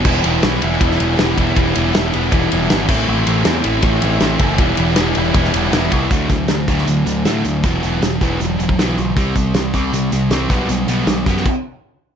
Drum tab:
CC |x---------------|--------------x-|----------------|----------------|
RD |--x-x-x-x-x-x-x-|x-x-x-x-x-x-x---|--x-x-x-x-x-x-x-|x-x-x-x-x-x-x-x-|
HH |----------------|----------------|----------------|----------------|
SD |----o----o--o---|----o-------o---|----o-------o---|----o----o--o---|
BD |o-------o-----o-|o-------o-----o-|--------o-----o-|o-------o-----o-|

CC |----------------|----------------|----------------|--------x-------|
RD |----------------|----------------|----------------|----------------|
HH |x-x-x-x-x-x-x-x-|x-x-x-x-x-x-x-x-|x-x-x-x-x-x-x-x-|x-x-x-x---------|
SD |----o--o----o---|----o-------o---|----o-------o---|----o--o--------|
BD |o-o---o---------|o-----o----o----|o-o---o-------o-|------o-o-------|